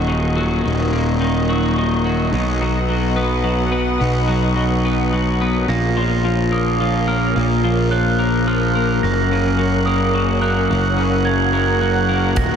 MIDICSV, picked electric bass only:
0, 0, Header, 1, 2, 480
1, 0, Start_track
1, 0, Tempo, 558140
1, 565, Time_signature, 3, 2, 24, 8
1, 10802, End_track
2, 0, Start_track
2, 0, Title_t, "Picked electric bass"
2, 0, Program_c, 0, 34
2, 0, Note_on_c, 0, 27, 49
2, 530, Note_off_c, 0, 27, 0
2, 564, Note_on_c, 0, 27, 48
2, 1978, Note_off_c, 0, 27, 0
2, 1999, Note_on_c, 0, 35, 49
2, 3416, Note_off_c, 0, 35, 0
2, 3446, Note_on_c, 0, 35, 51
2, 4859, Note_off_c, 0, 35, 0
2, 4888, Note_on_c, 0, 34, 53
2, 6299, Note_off_c, 0, 34, 0
2, 6331, Note_on_c, 0, 34, 54
2, 7739, Note_off_c, 0, 34, 0
2, 7768, Note_on_c, 0, 30, 58
2, 9176, Note_off_c, 0, 30, 0
2, 9209, Note_on_c, 0, 30, 54
2, 10614, Note_off_c, 0, 30, 0
2, 10637, Note_on_c, 0, 27, 56
2, 10802, Note_off_c, 0, 27, 0
2, 10802, End_track
0, 0, End_of_file